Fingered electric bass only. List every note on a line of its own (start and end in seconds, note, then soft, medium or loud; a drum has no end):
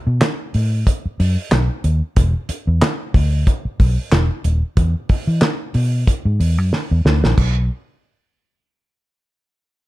0.07 0.19 B2 loud
0.55 0.83 A2 medium
1.05 muted fingered electric bass stroke soft
1.20 1.36 F#2 loud
1.51 1.68 B1 loud
1.84 2.00 D#2 loud
2.17 2.33 E1 loud
2.49 muted fingered electric bass stroke soft
2.67 2.80 E2 medium
3.15 3.43 D2 medium
3.65 muted fingered electric bass stroke soft
3.80 3.96 B1 medium
4.12 4.28 E1 medium
4.45 4.61 D#1 loud
4.77 4.93 E2 loud
5.10 muted fingered electric bass stroke soft
5.27 5.40 E3 medium
5.75 6.04 B2 medium
6.25 6.38 G#2 medium
6.40 6.58 E2 loud
6.58 6.71 F#2 medium
6.91 7.04 E2 medium
7.05 7.21 D2 loud
7.23 7.36 A#1 medium
7.38 7.68 B1 medium